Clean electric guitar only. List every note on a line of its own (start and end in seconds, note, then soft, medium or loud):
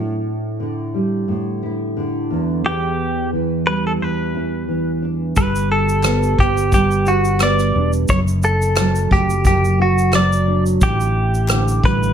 2.66 3.29 G4 medium
3.67 3.86 B4 medium
3.87 3.92 A4 medium
4.02 5.04 B4 medium
5.37 5.71 B4 medium
5.72 6.40 A4 medium
6.40 6.73 G4 medium
6.74 7.09 G4 medium
7.08 7.43 F#4 medium
7.43 7.91 D5 medium
8.10 8.19 C#5 loud
8.45 9.12 A4 medium
9.12 9.45 G4 medium
9.47 9.81 G4 medium
9.82 10.12 F#4 medium
10.15 10.63 D5 medium
10.83 11.85 G4 medium
11.85 12.13 B4 medium